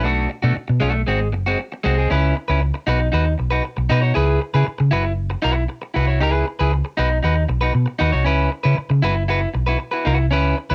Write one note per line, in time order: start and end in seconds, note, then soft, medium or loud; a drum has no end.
0.03 0.26 B1 loud
0.03 0.28 A3 medium
0.03 0.28 D4 medium
0.03 0.29 F#4 medium
0.30 muted clean electric guitar stroke medium
0.43 0.54 B2 loud
0.43 0.54 A3 medium
0.43 0.55 D4 medium
0.43 0.56 F#4 medium
0.56 muted clean electric guitar stroke soft
0.56 muted fingered electric bass stroke soft
0.68 0.80 B2 loud
0.68 muted clean electric guitar stroke medium
0.80 1.03 B1 loud
0.80 1.01 A3 medium
0.80 0.94 D4 medium
0.80 0.93 F#4 medium
0.94 muted clean electric guitar stroke soft
1.07 1.34 G#1 loud
1.07 1.27 G#3 medium
1.07 1.20 C4 medium
1.07 1.19 F#4 medium
1.20 muted clean electric guitar stroke soft
1.33 1.54 F#1 loud
1.33 muted clean electric guitar stroke medium
1.46 1.58 G#3 soft
1.46 1.59 C4 medium
1.46 1.60 F#4 medium
1.59 muted clean electric guitar stroke soft
1.72 muted clean electric guitar stroke medium
1.84 2.06 C2 loud
1.84 1.98 G#3 loud
1.84 1.97 C4 loud
1.84 1.97 F#4 loud
1.97 2.14 G#3 medium
1.97 2.10 C4 medium
1.97 2.10 G#4 medium
2.10 2.32 C#2 loud
2.10 2.34 C#4 medium
2.10 2.34 E4 loud
2.10 2.35 B4 medium
2.36 muted clean electric guitar stroke soft
2.48 2.70 C#2 loud
2.48 2.60 C#4 medium
2.48 2.61 E4 medium
2.48 2.61 B4 medium
2.61 muted clean electric guitar stroke soft
2.74 muted clean electric guitar stroke soft
2.87 3.08 B1 loud
2.87 3.07 D#4 medium
2.87 3.00 F#4 loud
2.87 2.99 B4 loud
3.00 muted clean electric guitar stroke medium
3.12 3.34 D#2 loud
3.12 3.32 D#4 medium
3.12 3.26 F#4 medium
3.12 3.24 B4 medium
3.25 muted clean electric guitar stroke soft
3.38 3.60 B1 medium
3.38 muted clean electric guitar stroke soft
3.50 3.62 D#4 medium
3.50 3.63 F#4 medium
3.50 3.64 B4 medium
3.64 muted clean electric guitar stroke soft
3.77 3.88 B1 medium
3.77 muted clean electric guitar stroke soft
3.89 4.11 B2 loud
3.89 4.02 D#4 loud
3.89 4.01 F#4 medium
3.89 4.01 B4 loud
4.02 4.14 D#4 medium
4.02 4.15 F#4 medium
4.02 4.16 C#5 medium
4.14 4.37 C#2 loud
4.14 4.38 E4 medium
4.14 4.39 G#4 loud
4.14 4.39 B4 loud
4.41 muted clean electric guitar stroke medium
4.54 4.65 C#3 loud
4.54 4.65 E4 medium
4.54 4.65 G#4 medium
4.54 4.66 B4 medium
4.66 muted clean electric guitar stroke soft
4.66 muted fingered electric bass stroke medium
4.78 4.90 C#3 loud
4.78 muted clean electric guitar stroke soft
4.91 5.35 F#1 loud
4.91 5.12 E4 medium
4.91 5.05 F#4 medium
4.91 5.03 B4 medium
5.05 muted clean electric guitar stroke medium
5.30 muted clean electric guitar stroke medium
5.42 5.65 B1 loud
5.42 5.63 E4 loud
5.42 5.56 F#4 loud
5.42 5.54 B4 loud
5.55 muted clean electric guitar stroke medium
5.69 muted clean electric guitar stroke soft
5.82 muted clean electric guitar stroke soft
5.94 6.22 C2 medium
5.94 6.08 E4 medium
5.94 6.07 F#4 medium
5.94 6.07 B4 loud
6.07 6.19 E4 medium
6.07 6.21 F#4 medium
6.07 6.22 C#5 medium
6.21 6.42 C#2 loud
6.21 6.44 E4 loud
6.21 6.45 G#4 loud
6.21 6.45 B4 loud
6.47 muted clean electric guitar stroke soft
6.59 6.81 C#2 loud
6.59 6.71 E4 medium
6.59 6.72 G#4 medium
6.59 6.73 B4 medium
6.72 muted clean electric guitar stroke soft
6.85 muted clean electric guitar stroke soft
6.97 7.19 B1 loud
6.97 7.18 D#4 loud
6.97 7.11 F#4 medium
6.97 7.09 B4 medium
7.10 muted clean electric guitar stroke soft
7.23 7.45 D#2 loud
7.23 7.43 D#4 medium
7.23 7.36 F#4 medium
7.23 7.35 B4 medium
7.36 muted clean electric guitar stroke medium
7.49 7.70 B1 medium
7.49 muted clean electric guitar stroke medium
7.61 7.72 D#4 medium
7.61 7.73 F#4 medium
7.61 7.74 B4 medium
7.73 7.85 B2 loud
7.73 muted clean electric guitar stroke soft
7.86 muted clean electric guitar stroke soft
7.99 8.11 D#2 loud
7.99 8.13 D#4 medium
7.99 8.12 F#4 loud
7.99 8.12 B4 medium
8.12 8.26 C2 loud
8.12 8.24 D#4 medium
8.12 8.25 F#4 medium
8.12 8.26 C#5 medium
8.24 8.47 C#2 loud
8.24 8.49 C#4 medium
8.24 8.49 E4 medium
8.24 8.50 B4 loud
8.51 muted clean electric guitar stroke medium
8.63 8.75 C#3 loud
8.63 8.76 C#4 soft
8.63 8.76 E4 medium
8.63 8.77 B4 medium
8.77 muted clean electric guitar stroke soft
8.77 muted fingered electric bass stroke medium
8.90 9.01 C#3 loud
8.90 muted clean electric guitar stroke soft
9.02 9.45 F#1 loud
9.02 9.23 E4 medium
9.02 9.16 F#4 medium
9.02 9.14 B4 loud
9.16 muted clean electric guitar stroke soft
9.28 9.48 E4 medium
9.28 9.41 F#4 medium
9.28 9.40 B4 medium
9.41 muted clean electric guitar stroke soft
9.54 9.75 B1 medium
9.54 muted clean electric guitar stroke medium
9.67 9.77 E4 medium
9.67 9.78 F#4 medium
9.67 9.79 B4 medium
9.79 muted clean electric guitar stroke soft
9.91 10.04 E4 medium
9.91 10.05 F#4 medium
9.91 10.06 B4 medium
10.05 10.32 C2 loud
10.05 10.25 E4 medium
10.05 10.18 F#4 loud
10.05 10.17 B4 loud
10.18 muted clean electric guitar stroke soft
10.31 10.52 C#2 loud
10.31 10.54 C#4 loud
10.31 10.55 E4 medium
10.31 10.55 B4 loud
10.57 muted clean electric guitar stroke medium
10.70 10.75 C#2 loud
10.70 10.75 C#4 medium
10.70 10.75 E4 medium
10.70 10.75 B4 medium